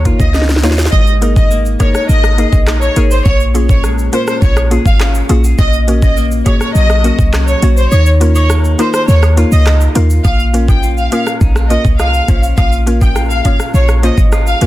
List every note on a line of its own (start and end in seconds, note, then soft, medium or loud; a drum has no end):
0.00 0.12 D#2 loud
0.00 0.92 D#3 medium
0.00 1.51 A#3 medium
0.00 0.34 D#4 medium
0.05 0.17 A#3 medium
0.05 0.17 D#4 medium
0.05 0.62 F4 medium
0.05 0.17 F4 medium
0.05 0.17 A#4 medium
0.05 kick medium
0.05 closed hi-hat medium
0.05 cabasa medium
0.05 shaker soft
0.20 0.65 C#2 medium
0.20 0.31 D#5 medium
0.20 kick medium
0.20 shaker medium
0.34 1.21 D#4 medium
0.34 snare medium
0.34 high woodblock medium
0.34 shaker medium
0.42 snare medium
0.49 snare medium
0.49 shaker medium
0.56 snare medium
0.63 0.88 D#2 loud
0.63 0.75 A#3 medium
0.63 0.75 D#4 medium
0.63 0.98 F4 medium
0.63 0.75 F4 medium
0.63 0.75 C#5 loud
0.63 snare medium
0.63 closed hi-hat medium
0.63 cabasa medium
0.63 shaker medium
0.71 snare medium
0.78 snare loud
0.78 shaker medium
0.85 snare medium
0.93 1.76 G#1 loud
0.93 3.29 G#3 medium
0.93 1.04 D#5 loud
0.93 kick loud
0.93 shaker medium
1.07 shaker medium
1.21 1.33 A#3 medium
1.21 1.33 D#4 medium
1.21 1.79 D#4 medium
1.21 1.34 G#4 medium
1.21 1.34 A#4 medium
1.21 closed hi-hat medium
1.21 cabasa medium
1.21 shaker medium
1.36 1.48 D#5 medium
1.36 kick loud
1.36 shaker medium
1.51 2.09 A#3 medium
1.51 shaker medium
1.65 shaker medium
1.80 1.92 A#3 medium
1.80 1.92 D#4 medium
1.80 2.66 D#4 medium
1.80 1.92 G#4 medium
1.80 1.92 A#4 medium
1.80 1.92 C#5 medium
1.80 kick medium
1.80 closed hi-hat medium
1.80 cabasa medium
1.80 high woodblock medium
1.80 shaker medium
1.95 2.06 C#5 medium
1.95 cross-stick medium
1.95 shaker medium
2.09 2.45 G#1 loud
2.09 3.83 A#3 medium
2.09 2.50 D#5 loud
2.09 shaker medium
2.24 cross-stick loud
2.24 high woodblock medium
2.24 shaker medium
2.38 2.50 A#3 medium
2.38 2.50 D#4 medium
2.38 2.96 G#4 medium
2.38 2.50 G#4 medium
2.38 2.50 A#4 medium
2.38 closed hi-hat medium
2.38 cabasa medium
2.38 shaker soft
2.53 2.89 A#1 medium
2.53 kick loud
2.53 shaker medium
2.67 3.32 D#4 medium
2.67 cross-stick medium
2.67 clap loud
2.67 high woodblock medium
2.67 shaker medium
2.82 2.94 C#5 medium
2.82 shaker medium
2.96 3.21 G#1 medium
2.96 3.08 A#3 medium
2.96 3.08 D#4 medium
2.96 4.71 G#4 medium
2.96 3.08 G#4 medium
2.96 3.08 A#4 medium
2.96 closed hi-hat medium
2.96 cabasa medium
2.96 shaker medium
3.11 3.23 C5 medium
3.11 shaker medium
3.26 4.09 A#1 loud
3.26 5.57 A#2 medium
3.26 3.37 C#5 loud
3.26 kick loud
3.26 shaker medium
3.40 shaker medium
3.54 3.66 A#3 medium
3.54 3.66 C#4 medium
3.54 4.13 C#4 medium
3.54 3.67 F4 medium
3.54 3.67 G#4 medium
3.54 closed hi-hat medium
3.54 cabasa medium
3.54 shaker medium
3.69 3.81 C#5 medium
3.69 kick loud
3.69 shaker medium
3.84 5.64 G#3 medium
3.84 cross-stick medium
3.84 shaker medium
3.98 shaker medium
4.13 4.24 A#3 medium
4.13 4.25 C#4 medium
4.13 5.00 C#4 medium
4.13 4.25 F4 medium
4.13 4.25 A#4 medium
4.13 4.25 C5 medium
4.13 closed hi-hat medium
4.13 cabasa medium
4.13 shaker medium
4.28 4.39 C5 medium
4.28 cross-stick medium
4.28 shaker medium
4.42 4.78 A#1 loud
4.42 5.64 F3 medium
4.42 4.54 C#5 medium
4.42 kick loud
4.42 shaker medium
4.57 cross-stick loud
4.57 high woodblock medium
4.57 shaker medium
4.71 4.83 A#3 medium
4.71 4.83 C#4 medium
4.71 4.83 F4 medium
4.71 5.29 G#4 medium
4.71 4.83 G#4 medium
4.71 closed hi-hat medium
4.71 cabasa medium
4.71 shaker soft
4.86 5.22 G#1 medium
4.86 4.97 F5 medium
4.86 kick medium
4.86 shaker medium
5.00 5.87 C#4 medium
5.00 cross-stick medium
5.00 clap loud
5.00 high woodblock medium
5.00 shaker medium
5.15 shaker medium
5.29 5.54 A#1 medium
5.29 5.41 A#3 medium
5.29 5.41 C#4 medium
5.29 5.41 F4 medium
5.29 5.44 F#4 medium
5.29 5.41 G#4 loud
5.29 closed hi-hat medium
5.29 cabasa medium
5.29 shaker medium
5.44 5.64 G#4 medium
5.44 shaker medium
5.59 6.42 A#1 loud
5.59 7.92 A#2 medium
5.59 5.70 D#5 loud
5.59 kick loud
5.59 shaker medium
5.73 shaker medium
5.87 5.99 A#3 medium
5.87 5.99 C#4 medium
5.87 6.45 C#4 medium
5.87 6.00 F#4 medium
5.87 6.00 A#4 medium
5.87 closed hi-hat medium
5.87 cabasa medium
5.87 shaker medium
6.02 6.14 D#5 medium
6.02 kick loud
6.02 shaker medium
6.17 8.49 A#3 medium
6.17 shaker medium
6.31 shaker medium
6.46 6.58 A#3 medium
6.46 6.58 C#4 medium
6.46 7.32 C#4 medium
6.46 6.58 F#4 medium
6.46 6.58 G#4 medium
6.46 6.58 C#5 medium
6.46 kick medium
6.46 closed hi-hat medium
6.46 cabasa medium
6.46 high woodblock medium
6.46 shaker medium
6.61 6.72 C#5 medium
6.61 cross-stick medium
6.61 shaker medium
6.75 7.11 A#1 loud
6.75 7.91 F#3 medium
6.75 7.16 D#5 loud
6.75 shaker medium
6.90 cross-stick loud
6.90 high woodblock medium
6.90 shaker medium
7.04 7.16 A#3 medium
7.04 7.16 C#4 medium
7.04 7.61 F#4 medium
7.04 7.16 F#4 medium
7.04 7.16 A#4 medium
7.04 closed hi-hat medium
7.04 cabasa medium
7.04 shaker soft
7.19 7.55 C2 medium
7.19 kick loud
7.19 shaker medium
7.33 7.97 C#4 medium
7.33 cross-stick loud
7.33 clap medium
7.33 high woodblock medium
7.33 shaker medium
7.48 7.60 C#5 medium
7.48 shaker medium
7.62 7.87 A#1 loud
7.62 7.74 A#3 medium
7.62 7.74 C#4 medium
7.62 7.97 F#4 medium
7.62 7.74 F#4 medium
7.62 7.75 C#5 medium
7.62 closed hi-hat medium
7.62 cabasa medium
7.62 shaker medium
7.77 7.89 C5 medium
7.77 shaker medium
7.92 8.75 D#2 loud
7.92 10.25 D#3 medium
7.92 8.03 C#5 loud
7.92 high woodblock medium
7.92 shaker medium
8.06 shaker medium
8.20 8.32 A#3 medium
8.20 8.35 C#4 medium
8.20 8.32 D#4 medium
8.20 8.33 F4 medium
8.20 8.33 A#4 medium
8.20 closed hi-hat medium
8.20 cabasa medium
8.20 shaker medium
8.35 8.78 D#4 medium
8.35 8.47 C#5 medium
8.35 high woodblock medium
8.35 shaker medium
8.50 9.08 A#3 medium
8.50 cross-stick medium
8.50 shaker medium
8.64 shaker medium
8.79 8.90 A#3 medium
8.79 8.91 D#4 medium
8.79 9.65 D#4 medium
8.79 8.91 F4 medium
8.79 8.91 A#4 medium
8.79 8.91 C5 medium
8.79 closed hi-hat medium
8.79 cabasa medium
8.79 high woodblock medium
8.79 shaker medium
8.94 9.05 C5 medium
8.94 cross-stick medium
8.94 shaker medium
9.08 9.44 D#2 loud
9.08 12.58 A#3 medium
9.08 9.20 C#5 medium
9.08 shaker medium
9.23 cross-stick medium
9.23 high woodblock medium
9.23 shaker medium
9.37 9.49 A#3 medium
9.37 9.49 D#4 medium
9.37 9.95 F4 medium
9.37 9.49 F4 medium
9.37 9.49 A#4 medium
9.37 closed hi-hat medium
9.37 cabasa medium
9.37 shaker soft
9.52 9.88 C#2 loud
9.52 9.63 D#5 medium
9.52 shaker medium
9.66 10.31 D#4 medium
9.66 cross-stick medium
9.66 clap medium
9.66 high woodblock medium
9.66 shaker medium
9.81 shaker medium
9.95 10.20 D#2 medium
9.95 10.07 A#3 medium
9.95 10.07 D#4 medium
9.95 10.25 F4 medium
9.95 10.07 F4 medium
9.95 10.07 A#4 loud
9.95 closed hi-hat medium
9.95 cabasa medium
9.95 shaker medium
10.10 shaker medium
10.25 11.08 A#1 loud
10.25 12.56 A#2 medium
10.25 10.82 F4 medium
10.25 10.36 F5 loud
10.25 kick loud
10.25 high woodblock medium
10.25 shaker medium
10.39 shaker medium
10.53 10.65 A#3 medium
10.53 10.65 C#4 medium
10.53 11.11 C#4 medium
10.53 10.66 F4 medium
10.53 10.66 A#4 medium
10.53 closed hi-hat medium
10.53 cabasa medium
10.53 shaker medium
10.68 10.80 G5 medium
10.68 kick loud
10.68 high woodblock medium
10.68 shaker medium
10.83 11.41 F4 medium
10.83 shaker medium
10.98 11.09 F5 medium
10.98 shaker soft
11.12 11.24 A#3 medium
11.12 11.24 C#4 medium
11.12 11.69 C#4 medium
11.12 11.24 F4 medium
11.12 11.24 A#4 medium
11.12 11.24 F5 medium
11.12 closed hi-hat medium
11.12 cabasa medium
11.12 high woodblock medium
11.12 shaker medium
11.27 cross-stick medium
11.27 shaker medium
11.41 11.77 A#1 loud
11.41 11.56 D#4 medium
11.41 kick medium
11.41 shaker medium
11.56 11.98 F4 medium
11.56 cross-stick medium
11.56 shaker medium
11.70 11.82 A#3 medium
11.70 11.82 C#4 medium
11.70 12.27 C#4 medium
11.70 11.82 F4 medium
11.70 11.82 A#4 medium
11.70 11.82 D#5 medium
11.70 closed hi-hat medium
11.70 cabasa medium
11.70 shaker soft
11.85 12.21 C2 medium
11.85 kick loud
11.85 shaker medium
11.99 12.58 F4 medium
11.99 12.41 F5 medium
11.99 cross-stick medium
11.99 high woodblock medium
11.99 shaker medium
12.14 shaker medium
12.28 12.53 A#1 loud
12.28 12.40 A#3 medium
12.28 12.40 C#4 medium
12.28 12.85 C#4 medium
12.28 12.40 F4 medium
12.28 12.40 C5 medium
12.28 kick medium
12.28 closed hi-hat medium
12.28 cabasa medium
12.28 shaker medium
12.43 shaker medium
12.58 13.41 A#1 loud
12.58 14.67 A#2 medium
12.58 13.15 F4 medium
12.58 12.69 F5 medium
12.58 kick loud
12.58 high woodblock medium
12.58 shaker medium
12.72 shaker medium
12.86 12.98 A#3 medium
12.86 13.44 C#4 medium
12.86 12.98 C#4 medium
12.86 12.99 F4 medium
12.86 12.99 A#4 medium
12.86 closed hi-hat medium
12.86 cabasa medium
12.86 shaker medium
13.01 13.13 G5 medium
13.01 kick loud
13.01 high woodblock medium
13.01 shaker medium
13.16 13.74 F4 medium
13.16 cross-stick medium
13.16 shaker medium
13.30 13.42 F5 medium
13.30 shaker soft
13.45 13.57 A#3 medium
13.45 14.02 C#4 medium
13.45 13.57 C#4 medium
13.45 13.57 F4 medium
13.45 13.57 C#5 medium
13.45 13.57 F5 medium
13.45 kick medium
13.45 closed hi-hat medium
13.45 cabasa medium
13.45 high woodblock medium
13.45 shaker medium
13.60 cross-stick medium
13.60 shaker medium
13.74 14.10 A#1 loud
13.74 14.32 F4 medium
13.74 13.86 C#5 medium
13.74 shaker medium
13.89 cross-stick medium
13.89 shaker medium
14.03 14.15 A#3 medium
14.03 14.15 C#4 medium
14.03 14.60 C#4 medium
14.03 14.15 F4 medium
14.03 14.15 C5 medium
14.03 14.15 D#5 medium
14.03 closed hi-hat medium
14.03 cabasa medium
14.03 shaker soft
14.18 14.54 G#1 loud
14.18 kick loud
14.18 shaker medium
14.32 14.67 F4 medium
14.32 cross-stick medium
14.32 high woodblock medium
14.32 shaker medium
14.47 14.59 F5 medium
14.47 shaker medium
14.61 14.67 A#1 medium
14.61 14.67 A#3 medium
14.61 14.67 C#4 medium
14.61 14.67 F4 medium
14.61 14.67 A#4 medium
14.61 closed hi-hat medium
14.61 cabasa medium
14.61 shaker medium